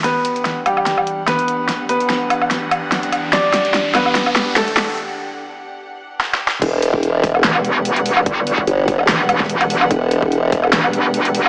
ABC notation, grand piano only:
X:1
M:4/4
L:1/8
Q:"Swing 16ths" 1/4=146
K:Em
V:1 name="Grand piano"
[B,B]3 [G,G]3 [B,B]2- | [B,B] [B,B]6- [B,B] | [Dd]3 [B,B]3 [A,A]2 | z8 |
z8 | z8 | z8 |]